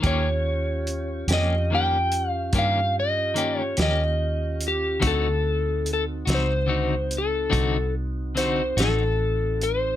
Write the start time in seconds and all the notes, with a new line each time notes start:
0.00 D#2 D#3 A#3 C#4 F4 G4, kick, closed hi-hat
0.04 G4 C#5
0.87 closed hi-hat
1.28 F2 C#4 G4, snare, closed hi-hat
1.32 A#3 D#5
1.70 D#3 A#3 C#4
1.75 G4 G5
2.12 closed hi-hat
2.31 F5
2.53 G2 D#3 A#3 C#4 G4, kick, closed hi-hat
2.59 F5
3.00 D#5
3.34 D#3 A#3 C#4 G4, closed hi-hat
3.60 C#5
3.77 D#2 A#3 C#4 G4, snare, closed hi-hat
3.82 D#5
4.61 closed hi-hat
4.68 G4
5.00 D2 D3 C4 D#4 F#4, kick, closed hi-hat
5.07 A4
5.86 closed hi-hat
5.93 A4
6.25 C#2 C4 D#4 F#4, closed hi-hat
6.30 snare
6.34 C5
6.67 D3 C4 D#4 F#4
7.11 closed hi-hat
7.18 A4
7.50 C2 D3 C4 D#4 F#4, kick, closed hi-hat
8.35 D3 C4 D#4 F#4 C5, closed hi-hat
8.40 snare
8.77 A1 C4 D#4 F#4 A4, snare, closed hi-hat
9.61 C5, closed hi-hat